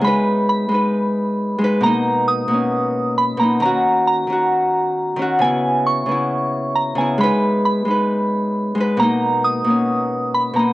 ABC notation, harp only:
X:1
M:4/4
L:1/8
Q:1/4=134
K:Abm
V:1 name="Harp"
[A,Ec]2 z [A,Ec]3 z [A,Ec] | [=B,,^A,^D]2 z [B,,A,_D]3 z [B,,A,^D] | [E,DG]2 z [E,DG]3 z [E,DG] | [D,CF]2 z [D,CF]3 z [D,CF] |
[A,Ec]2 z [A,Ec]3 z [A,Ec] | [=B,,^A,^D]2 z [B,,A,_D]3 z [B,,A,^D] |]